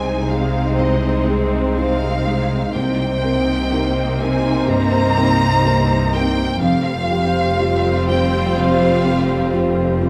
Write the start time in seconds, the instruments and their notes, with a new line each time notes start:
Already playing: felt piano C2 G#3 D#4 G#4, double bass section C2, harp C3 G#3 C4 D#4, cello section C3, viola section G#3 C4, violin section D#4 C5 G#5
0.14 harp D#4
0.30 felt piano G#3 G#4, violin section F5
0.46 harp G#4
0.78 felt piano C2, harp C3, violin section D#5
1.11 harp G#3
1.28 felt piano G#3 G#4
1.44 harp D#4
1.76 harp C4, felt piano D#4 G#4, violin section F5
2.10 harp D#4
2.27 felt piano G#3 G#4
2.42 harp G#4
2.74 double bass section C2, felt piano C2, cello section C3, harp C3, viola section A#3 C4, violin section D#4 C5 G5
3.07 harp C4
3.24 felt piano C4 A#4
3.39 harp D#4
3.71 harp G3, felt piano D#4 A#4
4.04 harp D#4
4.20 felt piano C4 A#4, violin section G#5
4.37 harp A#4
4.68 felt piano G2, harp G3, violin section A#5
5.02 harp C4
5.17 felt piano C4 A#4
5.34 harp D#4
5.65 harp G3, felt piano D#4 A#4
5.98 harp D#4
6.14 felt piano C4 A#4, violin section G5
6.30 harp A#4
6.61 double bass section F1, cello section F2, felt piano F2, harp F3, viola section G3 C4, violin section F4 C5 F5
6.94 harp F4
7.10 felt piano C4 G4
7.26 harp G4
7.60 harp C4, felt piano F4 G4
7.92 harp G4
8.10 felt piano C4 G4, violin section G5
8.25 harp C5
8.57 felt piano C3, harp C4, violin section F5
8.90 harp F4
9.05 felt piano C4 G4
9.22 harp G4
9.54 harp C4, felt piano F4 G4
9.86 harp G4
10.02 felt piano C4 G4